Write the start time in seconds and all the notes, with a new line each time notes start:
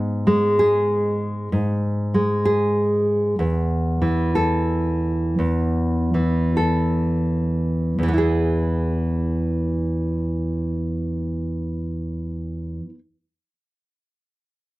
Already playing: G#2
0.27 G#3
0.59 G#4
1.52 G#2
2.14 G#3
2.45 G#4
3.39 E2
4.02 E3
4.35 A4
5.39 E2
6.14 E3
6.57 A4
7.98 E2
8.03 E3
8.08 B3
8.14 E4
8.18 G#4